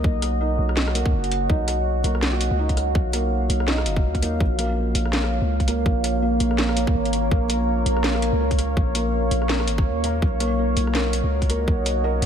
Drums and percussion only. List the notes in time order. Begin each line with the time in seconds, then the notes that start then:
0.04 kick
0.22 cross-stick, closed hi-hat
0.69 cross-stick
0.77 snare
0.88 cross-stick
0.95 closed hi-hat
1.06 kick
1.24 closed hi-hat
1.32 closed hi-hat
1.50 kick
1.68 cross-stick, closed hi-hat
2.04 closed hi-hat
2.15 cross-stick
2.23 snare
2.33 cross-stick
2.41 closed hi-hat
2.69 kick, closed hi-hat
2.77 cross-stick, closed hi-hat
2.95 kick
3.13 cross-stick, closed hi-hat
3.50 closed hi-hat
3.60 cross-stick
3.68 snare
3.78 cross-stick
3.86 closed hi-hat
3.96 kick
4.15 kick, closed hi-hat
4.22 closed hi-hat
4.40 kick
4.59 cross-stick, closed hi-hat
4.95 closed hi-hat
5.05 cross-stick
5.13 snare
5.24 cross-stick
5.60 kick, closed hi-hat
5.68 cross-stick, closed hi-hat
5.86 kick
6.04 cross-stick, closed hi-hat
6.40 closed hi-hat
6.51 cross-stick
6.58 snare
6.69 cross-stick
6.77 closed hi-hat
6.87 kick
7.06 closed hi-hat
7.13 closed hi-hat
7.31 kick
7.50 cross-stick, closed hi-hat
7.86 closed hi-hat
7.97 cross-stick
8.04 snare
8.15 cross-stick
8.22 closed hi-hat
8.51 kick, closed hi-hat
8.59 cross-stick, closed hi-hat
8.77 kick
8.95 cross-stick, closed hi-hat
9.31 closed hi-hat
9.42 cross-stick
9.49 snare
9.60 cross-stick
9.68 closed hi-hat
9.78 kick
10.04 closed hi-hat
10.22 kick
10.40 cross-stick, closed hi-hat
10.77 closed hi-hat
10.87 cross-stick
10.95 snare
11.13 closed hi-hat
11.42 kick, closed hi-hat
11.50 cross-stick, closed hi-hat
11.68 kick
11.86 cross-stick, closed hi-hat
12.22 closed hi-hat